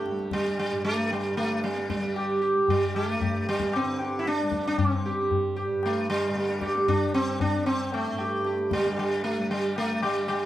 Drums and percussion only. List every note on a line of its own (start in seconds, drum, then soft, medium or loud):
0.06 tabla te medium
0.19 tabla te soft
0.31 tabla ke soft
0.45 tabla te medium
0.58 tabla tin medium
1.11 tabla tin medium
1.37 tabla na soft
1.63 tabla te medium
1.76 tabla te medium
1.90 tabla ke soft
2.03 tabla te medium
2.16 tabla na medium
2.68 tabla tin medium
2.68 tabla ge medium
2.95 tabla na soft
3.21 tabla tin medium
3.21 tabla ge medium
3.47 tabla na soft
3.60 tabla ke medium
3.73 tabla na medium
4.26 tabla te medium
4.39 tabla te medium
4.52 tabla ke medium
4.65 tabla te medium
4.78 tabla tin medium
4.78 tabla ge medium
5.31 tabla tin medium
5.31 tabla ge medium
5.57 tabla na soft
5.83 tabla na medium
6.36 tabla te medium
6.49 tabla te medium
6.61 tabla ke soft
6.75 tabla te medium
6.88 tabla tin medium
6.88 tabla ge medium
7.40 tabla tin medium
7.40 tabla ge medium
7.66 tabla na medium
7.92 tabla na medium
8.18 tabla na medium
8.44 tabla te medium
8.58 tabla te medium
8.71 tabla ke medium
8.84 tabla te medium
8.98 tabla tin medium
9.50 tabla tin medium
9.76 tabla na medium
10.02 tabla na medium
10.28 tabla na medium